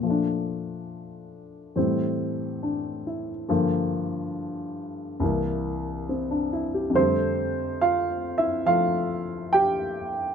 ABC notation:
X:1
M:4/4
L:1/16
Q:"Swing" 1/4=70
K:F
V:1 name="Grand piano"
z12 D2 E2- | E z8 z3 C D E G | [Cc]4 [Ff]2 [Ee]2 [Ff]4 [Gg]4 |]
V:2 name="Grand piano" clef=bass
[B,,F,A,D]8 [A,,E,G,C]8 | [G,,D,F,B,]8 [C,,C,E,B,]8 | [F,,D,G,A,]8 [F,A,]8 |]